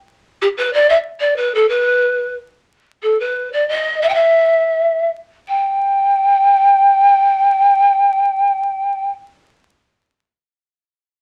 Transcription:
0.41 G4
0.57 B4
0.73 D5
0.89 E5
1.19 D5
1.36 B4
1.54 A4
1.68 B4
3.02 A4
3.19 B4
3.52 D5
3.68 D#5
4.01 E5
4.08 G5
4.13 E5
5.48 G5

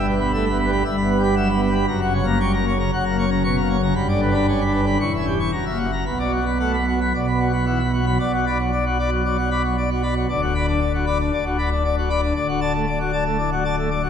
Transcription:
Already playing: G1 G2
0.00 G3
0.08 B4
0.16 B3
0.20 B5
0.33 A3 E5
0.46 B3 B5
0.59 B4
0.67 G3
0.72 B5
0.85 G1 G2 E5
0.97 B5
1.02 B3
1.10 B4
1.19 G3 B5
1.36 F#3 E5
1.49 B5
1.53 B3
1.62 B4
1.71 G3
1.75 B5
1.88 F#1 F#2 A#5
2.01 F#5
2.06 C#3
2.14 C#5
2.23 A#3
2.27 A#5
2.40 G3 C#6
2.54 A#3 A#5
2.67 C#5
2.75 C#3
2.79 A#5
2.93 F#1 F#2 F#5
3.05 A#5
3.10 A#3
3.18 C#5
3.28 C#3 A#5
3.44 B2 C#6
3.57 A#5
3.61 A#3
3.70 C#5
3.79 C#3
3.83 A#5
3.96 G1 G2 B5
4.09 D5
4.13 D3
4.22 B4
4.31 D4 B5
4.48 C#4 D5
4.61 B5
4.65 D4
4.73 B4
4.82 D3
4.86 B5
5.00 E1 E2 C#6
5.14 E5
5.18 C#4
5.26 G4
5.39 C#6
5.53 F#1 F#2 A#5
5.66 E5
5.70 A#3
5.79 F#4
5.93 A#5
6.06 B1 B2 B5
6.20 F#3 D5
6.32 F#4
6.41 B3
6.46 B5
6.60 A3 F#5
6.74 B5
6.79 B3
6.88 F#4
6.97 F#3 B5
7.15 B1 B2 D5
7.27 B5
7.32 B3
7.40 F#4
7.49 F#3 B5
7.66 E3 F#5
7.80 B5
7.84 B3
7.93 F#4
8.02 F#3
8.07 B5
8.20 B1 B2 D5
8.33 F#4
8.47 D5 B5
8.59 F#3
8.73 D5
8.86 F#4
8.99 D5 B5
9.12 F#3
9.25 F#3 D5
9.38 F#4
9.51 D5 B5
9.64 F#3
9.78 D5
9.91 F#4
10.03 D5 B5
10.16 F#3
10.29 D1 D2 D5
10.42 F#4
10.55 D5 B5
10.68 D4
10.80 D5
10.94 F#4
11.07 D5 B5
11.20 D4
11.32 D1 D2 D5
11.46 F#4
11.59 D5 B5
11.72 D4
11.84 D5
11.98 F#4
12.10 D5 B5
12.22 D4
12.36 D1 D2 D5
12.49 F#4
12.61 D5 A5
12.74 A3
12.87 D5
13.00 F#4
13.13 D5 A5
13.26 A3
13.39 A2 D5
13.52 F#4
13.65 D5 A5
13.78 A3
13.90 D5
14.03 F#4

